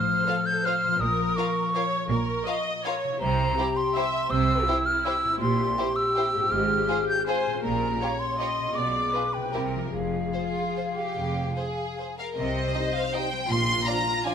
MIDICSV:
0, 0, Header, 1, 9, 480
1, 0, Start_track
1, 0, Key_signature, -4, "minor"
1, 0, Tempo, 367197
1, 1323, Time_signature, 3, 2, 24, 8
1, 8520, Tempo, 374065
1, 11880, Tempo, 407056
1, 15240, Tempo, 377358
1, 18242, End_track
2, 0, Start_track
2, 0, Title_t, "Flute"
2, 0, Program_c, 0, 73
2, 0, Note_on_c, 0, 89, 71
2, 602, Note_on_c, 0, 91, 72
2, 622, Note_off_c, 0, 89, 0
2, 854, Note_on_c, 0, 89, 69
2, 873, Note_off_c, 0, 91, 0
2, 1314, Note_on_c, 0, 87, 70
2, 1333, Note_off_c, 0, 89, 0
2, 1782, Note_on_c, 0, 85, 72
2, 1802, Note_off_c, 0, 87, 0
2, 3478, Note_off_c, 0, 85, 0
2, 4190, Note_on_c, 0, 82, 84
2, 4922, Note_on_c, 0, 84, 71
2, 4941, Note_off_c, 0, 82, 0
2, 5628, Note_on_c, 0, 88, 86
2, 5648, Note_off_c, 0, 84, 0
2, 6352, Note_on_c, 0, 89, 75
2, 6371, Note_off_c, 0, 88, 0
2, 6596, Note_on_c, 0, 88, 78
2, 6615, Note_off_c, 0, 89, 0
2, 7057, Note_off_c, 0, 88, 0
2, 7065, Note_on_c, 0, 84, 82
2, 7791, Note_on_c, 0, 88, 74
2, 7810, Note_off_c, 0, 84, 0
2, 8519, Note_on_c, 0, 89, 76
2, 8538, Note_off_c, 0, 88, 0
2, 9236, Note_off_c, 0, 89, 0
2, 9243, Note_on_c, 0, 91, 76
2, 9474, Note_off_c, 0, 91, 0
2, 9481, Note_on_c, 0, 80, 71
2, 9947, Note_off_c, 0, 80, 0
2, 9955, Note_on_c, 0, 82, 74
2, 10669, Note_on_c, 0, 84, 69
2, 10689, Note_off_c, 0, 82, 0
2, 11389, Note_on_c, 0, 86, 64
2, 11408, Note_off_c, 0, 84, 0
2, 12115, Note_on_c, 0, 79, 56
2, 12133, Note_off_c, 0, 86, 0
2, 12576, Note_off_c, 0, 79, 0
2, 12812, Note_on_c, 0, 77, 57
2, 15446, Note_off_c, 0, 77, 0
2, 18242, End_track
3, 0, Start_track
3, 0, Title_t, "Violin section"
3, 0, Program_c, 1, 48
3, 364, Note_on_c, 1, 77, 43
3, 468, Note_off_c, 1, 77, 0
3, 863, Note_on_c, 1, 77, 41
3, 968, Note_off_c, 1, 77, 0
3, 1805, Note_on_c, 1, 77, 42
3, 1910, Note_off_c, 1, 77, 0
3, 2291, Note_on_c, 1, 77, 39
3, 2396, Note_off_c, 1, 77, 0
3, 3232, Note_on_c, 1, 77, 48
3, 3337, Note_off_c, 1, 77, 0
3, 3724, Note_on_c, 1, 77, 47
3, 3828, Note_off_c, 1, 77, 0
3, 4682, Note_on_c, 1, 72, 48
3, 4786, Note_off_c, 1, 72, 0
3, 5179, Note_on_c, 1, 72, 42
3, 5284, Note_off_c, 1, 72, 0
3, 6116, Note_on_c, 1, 72, 53
3, 6221, Note_off_c, 1, 72, 0
3, 6613, Note_on_c, 1, 72, 46
3, 6718, Note_off_c, 1, 72, 0
3, 7570, Note_on_c, 1, 72, 50
3, 7675, Note_off_c, 1, 72, 0
3, 8058, Note_on_c, 1, 72, 44
3, 8162, Note_off_c, 1, 72, 0
3, 9012, Note_on_c, 1, 72, 47
3, 9115, Note_off_c, 1, 72, 0
3, 9499, Note_on_c, 1, 72, 45
3, 9602, Note_off_c, 1, 72, 0
3, 10438, Note_on_c, 1, 73, 40
3, 10541, Note_off_c, 1, 73, 0
3, 10937, Note_on_c, 1, 73, 37
3, 11040, Note_off_c, 1, 73, 0
3, 11874, Note_on_c, 1, 71, 35
3, 11968, Note_off_c, 1, 71, 0
3, 12346, Note_on_c, 1, 70, 32
3, 12440, Note_off_c, 1, 70, 0
3, 13298, Note_on_c, 1, 72, 31
3, 13392, Note_off_c, 1, 72, 0
3, 13807, Note_on_c, 1, 72, 30
3, 13902, Note_off_c, 1, 72, 0
3, 14749, Note_on_c, 1, 72, 33
3, 14843, Note_off_c, 1, 72, 0
3, 15246, Note_on_c, 1, 72, 28
3, 15348, Note_off_c, 1, 72, 0
3, 15502, Note_on_c, 1, 77, 45
3, 15597, Note_off_c, 1, 77, 0
3, 15752, Note_on_c, 1, 75, 60
3, 16453, Note_off_c, 1, 75, 0
3, 16471, Note_on_c, 1, 77, 55
3, 16703, Note_on_c, 1, 79, 62
3, 16709, Note_off_c, 1, 77, 0
3, 17169, Note_off_c, 1, 79, 0
3, 17170, Note_on_c, 1, 84, 72
3, 17635, Note_on_c, 1, 82, 61
3, 17642, Note_off_c, 1, 84, 0
3, 18124, Note_off_c, 1, 82, 0
3, 18130, Note_on_c, 1, 80, 55
3, 18242, Note_off_c, 1, 80, 0
3, 18242, End_track
4, 0, Start_track
4, 0, Title_t, "Viola section"
4, 0, Program_c, 2, 48
4, 0, Note_on_c, 2, 72, 53
4, 349, Note_off_c, 2, 72, 0
4, 354, Note_on_c, 2, 69, 52
4, 848, Note_on_c, 2, 72, 52
4, 851, Note_off_c, 2, 69, 0
4, 1315, Note_on_c, 2, 70, 63
4, 1322, Note_off_c, 2, 72, 0
4, 2262, Note_off_c, 2, 70, 0
4, 2275, Note_on_c, 2, 73, 62
4, 2736, Note_off_c, 2, 73, 0
4, 2747, Note_on_c, 2, 70, 61
4, 3221, Note_off_c, 2, 70, 0
4, 3226, Note_on_c, 2, 75, 72
4, 3728, Note_off_c, 2, 75, 0
4, 3730, Note_on_c, 2, 73, 61
4, 4203, Note_on_c, 2, 72, 60
4, 4204, Note_off_c, 2, 73, 0
4, 4669, Note_off_c, 2, 72, 0
4, 4681, Note_on_c, 2, 67, 63
4, 5172, Note_off_c, 2, 67, 0
4, 5172, Note_on_c, 2, 76, 67
4, 5640, Note_off_c, 2, 76, 0
4, 5644, Note_on_c, 2, 72, 59
4, 6104, Note_off_c, 2, 72, 0
4, 6110, Note_on_c, 2, 64, 61
4, 7077, Note_on_c, 2, 67, 62
4, 7078, Note_off_c, 2, 64, 0
4, 7540, Note_off_c, 2, 67, 0
4, 7556, Note_on_c, 2, 67, 69
4, 9457, Note_off_c, 2, 67, 0
4, 9494, Note_on_c, 2, 72, 62
4, 9954, Note_off_c, 2, 72, 0
4, 9958, Note_on_c, 2, 70, 54
4, 10426, Note_off_c, 2, 70, 0
4, 10435, Note_on_c, 2, 73, 57
4, 10930, Note_off_c, 2, 73, 0
4, 10931, Note_on_c, 2, 75, 54
4, 11391, Note_off_c, 2, 75, 0
4, 11399, Note_on_c, 2, 74, 53
4, 11882, Note_off_c, 2, 74, 0
4, 11882, Note_on_c, 2, 71, 45
4, 12353, Note_on_c, 2, 70, 41
4, 12355, Note_off_c, 2, 71, 0
4, 12816, Note_on_c, 2, 68, 45
4, 12819, Note_off_c, 2, 70, 0
4, 15499, Note_off_c, 2, 68, 0
4, 15734, Note_on_c, 2, 72, 59
4, 17115, Note_off_c, 2, 72, 0
4, 17159, Note_on_c, 2, 65, 54
4, 18242, Note_off_c, 2, 65, 0
4, 18242, End_track
5, 0, Start_track
5, 0, Title_t, "Violin section"
5, 0, Program_c, 3, 48
5, 354, Note_on_c, 3, 72, 40
5, 359, Note_on_c, 3, 65, 44
5, 458, Note_off_c, 3, 72, 0
5, 464, Note_off_c, 3, 65, 0
5, 857, Note_on_c, 3, 65, 44
5, 858, Note_on_c, 3, 72, 42
5, 961, Note_off_c, 3, 65, 0
5, 963, Note_off_c, 3, 72, 0
5, 1798, Note_on_c, 3, 70, 45
5, 1799, Note_on_c, 3, 65, 48
5, 1903, Note_off_c, 3, 65, 0
5, 1903, Note_off_c, 3, 70, 0
5, 2288, Note_on_c, 3, 65, 46
5, 2289, Note_on_c, 3, 70, 47
5, 2393, Note_off_c, 3, 65, 0
5, 2394, Note_off_c, 3, 70, 0
5, 3230, Note_on_c, 3, 65, 45
5, 3230, Note_on_c, 3, 70, 44
5, 3334, Note_off_c, 3, 70, 0
5, 3335, Note_off_c, 3, 65, 0
5, 3729, Note_on_c, 3, 70, 52
5, 3730, Note_on_c, 3, 65, 55
5, 3834, Note_off_c, 3, 65, 0
5, 3834, Note_off_c, 3, 70, 0
5, 4684, Note_on_c, 3, 64, 45
5, 4684, Note_on_c, 3, 67, 49
5, 4789, Note_off_c, 3, 64, 0
5, 4789, Note_off_c, 3, 67, 0
5, 5176, Note_on_c, 3, 64, 53
5, 5177, Note_on_c, 3, 67, 48
5, 5281, Note_off_c, 3, 64, 0
5, 5282, Note_off_c, 3, 67, 0
5, 6111, Note_on_c, 3, 64, 49
5, 6117, Note_on_c, 3, 67, 48
5, 6216, Note_off_c, 3, 64, 0
5, 6221, Note_off_c, 3, 67, 0
5, 6605, Note_on_c, 3, 64, 56
5, 6612, Note_on_c, 3, 67, 49
5, 6710, Note_off_c, 3, 64, 0
5, 6717, Note_off_c, 3, 67, 0
5, 7562, Note_on_c, 3, 64, 47
5, 7563, Note_on_c, 3, 67, 48
5, 7666, Note_off_c, 3, 64, 0
5, 7668, Note_off_c, 3, 67, 0
5, 8052, Note_on_c, 3, 64, 49
5, 8052, Note_on_c, 3, 67, 50
5, 8156, Note_off_c, 3, 64, 0
5, 8156, Note_off_c, 3, 67, 0
5, 8997, Note_on_c, 3, 65, 49
5, 8999, Note_on_c, 3, 68, 50
5, 9100, Note_off_c, 3, 65, 0
5, 9102, Note_off_c, 3, 68, 0
5, 9494, Note_on_c, 3, 65, 51
5, 9494, Note_on_c, 3, 68, 51
5, 9597, Note_off_c, 3, 65, 0
5, 9597, Note_off_c, 3, 68, 0
5, 10448, Note_on_c, 3, 67, 45
5, 10449, Note_on_c, 3, 65, 42
5, 10551, Note_off_c, 3, 65, 0
5, 10551, Note_off_c, 3, 67, 0
5, 10936, Note_on_c, 3, 65, 42
5, 10936, Note_on_c, 3, 67, 45
5, 11038, Note_off_c, 3, 65, 0
5, 11039, Note_off_c, 3, 67, 0
5, 11891, Note_on_c, 3, 65, 39
5, 11894, Note_on_c, 3, 68, 39
5, 11985, Note_off_c, 3, 65, 0
5, 11988, Note_off_c, 3, 68, 0
5, 12347, Note_on_c, 3, 67, 37
5, 12352, Note_on_c, 3, 64, 39
5, 12442, Note_off_c, 3, 67, 0
5, 12447, Note_off_c, 3, 64, 0
5, 13305, Note_on_c, 3, 65, 44
5, 13997, Note_off_c, 3, 65, 0
5, 14040, Note_on_c, 3, 67, 44
5, 14740, Note_on_c, 3, 68, 43
5, 14748, Note_off_c, 3, 67, 0
5, 15480, Note_off_c, 3, 68, 0
5, 15498, Note_on_c, 3, 70, 37
5, 15733, Note_off_c, 3, 70, 0
5, 16200, Note_on_c, 3, 75, 41
5, 16202, Note_on_c, 3, 63, 44
5, 16302, Note_off_c, 3, 75, 0
5, 16303, Note_off_c, 3, 63, 0
5, 16702, Note_on_c, 3, 75, 43
5, 16704, Note_on_c, 3, 63, 41
5, 16803, Note_off_c, 3, 75, 0
5, 16806, Note_off_c, 3, 63, 0
5, 17637, Note_on_c, 3, 65, 42
5, 17638, Note_on_c, 3, 74, 41
5, 17739, Note_off_c, 3, 65, 0
5, 17740, Note_off_c, 3, 74, 0
5, 18122, Note_on_c, 3, 65, 42
5, 18124, Note_on_c, 3, 74, 46
5, 18224, Note_off_c, 3, 65, 0
5, 18226, Note_off_c, 3, 74, 0
5, 18242, End_track
6, 0, Start_track
6, 0, Title_t, "Harp"
6, 0, Program_c, 4, 46
6, 0, Note_on_c, 4, 45, 46
6, 0, Note_on_c, 4, 53, 38
6, 0, Note_on_c, 4, 65, 39
6, 0, Note_on_c, 4, 72, 38
6, 1087, Note_on_c, 4, 46, 48
6, 1132, Note_off_c, 4, 53, 0
6, 1147, Note_on_c, 4, 53, 42
6, 1188, Note_off_c, 4, 65, 0
6, 1204, Note_on_c, 4, 65, 40
6, 1225, Note_off_c, 4, 45, 0
6, 1266, Note_on_c, 4, 70, 39
6, 1314, Note_off_c, 4, 72, 0
6, 3971, Note_on_c, 4, 48, 50
6, 4030, Note_on_c, 4, 60, 43
6, 4089, Note_on_c, 4, 64, 41
6, 4104, Note_off_c, 4, 46, 0
6, 4134, Note_off_c, 4, 53, 0
6, 4150, Note_on_c, 4, 67, 46
6, 4163, Note_off_c, 4, 65, 0
6, 4193, Note_off_c, 4, 70, 0
6, 6849, Note_on_c, 4, 46, 53
6, 6892, Note_off_c, 4, 60, 0
6, 6907, Note_on_c, 4, 60, 42
6, 6955, Note_off_c, 4, 64, 0
6, 6971, Note_on_c, 4, 64, 48
6, 6980, Note_off_c, 4, 48, 0
6, 7010, Note_off_c, 4, 67, 0
6, 7025, Note_on_c, 4, 67, 44
6, 8290, Note_on_c, 4, 44, 51
6, 8333, Note_off_c, 4, 60, 0
6, 8349, Note_on_c, 4, 60, 43
6, 8407, Note_on_c, 4, 65, 44
6, 8427, Note_off_c, 4, 46, 0
6, 8468, Note_on_c, 4, 68, 45
6, 8488, Note_off_c, 4, 64, 0
6, 8515, Note_off_c, 4, 67, 0
6, 9734, Note_on_c, 4, 46, 45
6, 9793, Note_on_c, 4, 61, 39
6, 9833, Note_off_c, 4, 65, 0
6, 9849, Note_on_c, 4, 65, 41
6, 9869, Note_off_c, 4, 44, 0
6, 9898, Note_off_c, 4, 60, 0
6, 9906, Note_on_c, 4, 67, 42
6, 9956, Note_off_c, 4, 68, 0
6, 11171, Note_on_c, 4, 47, 42
6, 11232, Note_on_c, 4, 59, 35
6, 11269, Note_off_c, 4, 65, 0
6, 11285, Note_on_c, 4, 65, 34
6, 11303, Note_off_c, 4, 46, 0
6, 11333, Note_off_c, 4, 61, 0
6, 11346, Note_on_c, 4, 68, 35
6, 11389, Note_off_c, 4, 67, 0
6, 12146, Note_on_c, 4, 48, 36
6, 12199, Note_on_c, 4, 58, 30
6, 12252, Note_on_c, 4, 64, 30
6, 12269, Note_off_c, 4, 47, 0
6, 12297, Note_off_c, 4, 59, 0
6, 12308, Note_on_c, 4, 67, 29
6, 12321, Note_off_c, 4, 65, 0
6, 12350, Note_off_c, 4, 68, 0
6, 12611, Note_on_c, 4, 53, 33
6, 12662, Note_on_c, 4, 56, 28
6, 12719, Note_on_c, 4, 65, 31
6, 12735, Note_off_c, 4, 48, 0
6, 12761, Note_off_c, 4, 58, 0
6, 12768, Note_on_c, 4, 68, 28
6, 12787, Note_off_c, 4, 64, 0
6, 12816, Note_off_c, 4, 67, 0
6, 15645, Note_off_c, 4, 53, 0
6, 15672, Note_off_c, 4, 56, 0
6, 15703, Note_off_c, 4, 65, 0
6, 15729, Note_off_c, 4, 68, 0
6, 15736, Note_on_c, 4, 48, 48
6, 15971, Note_on_c, 4, 60, 37
6, 16216, Note_on_c, 4, 63, 37
6, 16459, Note_on_c, 4, 67, 39
6, 16688, Note_off_c, 4, 63, 0
6, 16703, Note_on_c, 4, 63, 40
6, 16944, Note_on_c, 4, 55, 39
6, 17167, Note_on_c, 4, 46, 46
6, 17185, Note_off_c, 4, 48, 0
6, 17186, Note_off_c, 4, 67, 0
6, 17187, Note_off_c, 4, 60, 0
6, 17187, Note_off_c, 4, 63, 0
6, 17188, Note_off_c, 4, 55, 0
6, 17397, Note_on_c, 4, 62, 43
6, 17635, Note_on_c, 4, 65, 39
6, 17888, Note_on_c, 4, 70, 42
6, 18112, Note_off_c, 4, 65, 0
6, 18128, Note_on_c, 4, 65, 37
6, 18242, Note_off_c, 4, 46, 0
6, 18242, Note_off_c, 4, 62, 0
6, 18242, Note_off_c, 4, 65, 0
6, 18242, Note_off_c, 4, 70, 0
6, 18242, End_track
7, 0, Start_track
7, 0, Title_t, "French horn section"
7, 0, Program_c, 5, 60
7, 16206, Note_on_c, 5, 55, 40
7, 16211, Note_on_c, 5, 63, 40
7, 16385, Note_off_c, 5, 55, 0
7, 16389, Note_off_c, 5, 63, 0
7, 16704, Note_on_c, 5, 55, 40
7, 16705, Note_on_c, 5, 63, 41
7, 16873, Note_off_c, 5, 55, 0
7, 16874, Note_off_c, 5, 63, 0
7, 17649, Note_on_c, 5, 53, 40
7, 17649, Note_on_c, 5, 62, 38
7, 17823, Note_off_c, 5, 53, 0
7, 17823, Note_off_c, 5, 62, 0
7, 18123, Note_on_c, 5, 53, 40
7, 18125, Note_on_c, 5, 62, 39
7, 18242, Note_off_c, 5, 53, 0
7, 18242, Note_off_c, 5, 62, 0
7, 18242, End_track
8, 0, Start_track
8, 0, Title_t, "Cello section"
8, 0, Program_c, 6, 48
8, 0, Note_on_c, 6, 45, 55
8, 255, Note_off_c, 6, 45, 0
8, 1322, Note_on_c, 6, 46, 65
8, 1691, Note_off_c, 6, 46, 0
8, 2750, Note_on_c, 6, 46, 69
8, 3128, Note_off_c, 6, 46, 0
8, 4210, Note_on_c, 6, 48, 67
8, 4600, Note_off_c, 6, 48, 0
8, 5636, Note_on_c, 6, 48, 64
8, 6026, Note_off_c, 6, 48, 0
8, 7075, Note_on_c, 6, 46, 61
8, 7474, Note_off_c, 6, 46, 0
8, 8521, Note_on_c, 6, 44, 62
8, 8916, Note_off_c, 6, 44, 0
8, 9966, Note_on_c, 6, 46, 59
8, 10357, Note_off_c, 6, 46, 0
8, 11405, Note_on_c, 6, 47, 47
8, 11801, Note_off_c, 6, 47, 0
8, 12355, Note_on_c, 6, 48, 43
8, 12743, Note_off_c, 6, 48, 0
8, 12818, Note_on_c, 6, 41, 42
8, 13220, Note_off_c, 6, 41, 0
8, 14272, Note_on_c, 6, 41, 41
8, 14667, Note_off_c, 6, 41, 0
8, 15731, Note_on_c, 6, 48, 54
8, 16127, Note_off_c, 6, 48, 0
8, 17161, Note_on_c, 6, 46, 55
8, 17555, Note_off_c, 6, 46, 0
8, 18242, End_track
9, 0, Start_track
9, 0, Title_t, "Double bass section"
9, 0, Program_c, 7, 48
9, 0, Note_on_c, 7, 33, 56
9, 256, Note_off_c, 7, 33, 0
9, 1329, Note_on_c, 7, 34, 60
9, 1695, Note_off_c, 7, 34, 0
9, 2752, Note_on_c, 7, 34, 64
9, 3129, Note_off_c, 7, 34, 0
9, 4215, Note_on_c, 7, 36, 67
9, 4602, Note_off_c, 7, 36, 0
9, 5642, Note_on_c, 7, 36, 63
9, 6029, Note_off_c, 7, 36, 0
9, 7078, Note_on_c, 7, 34, 58
9, 7475, Note_off_c, 7, 34, 0
9, 8518, Note_on_c, 7, 32, 56
9, 8915, Note_off_c, 7, 32, 0
9, 9965, Note_on_c, 7, 34, 57
9, 10357, Note_off_c, 7, 34, 0
9, 11403, Note_on_c, 7, 35, 47
9, 11800, Note_off_c, 7, 35, 0
9, 12358, Note_on_c, 7, 36, 42
9, 12745, Note_off_c, 7, 36, 0
9, 12819, Note_on_c, 7, 29, 39
9, 13221, Note_off_c, 7, 29, 0
9, 14274, Note_on_c, 7, 29, 42
9, 14668, Note_off_c, 7, 29, 0
9, 15734, Note_on_c, 7, 36, 49
9, 16128, Note_off_c, 7, 36, 0
9, 17165, Note_on_c, 7, 34, 55
9, 17557, Note_off_c, 7, 34, 0
9, 18242, End_track
0, 0, End_of_file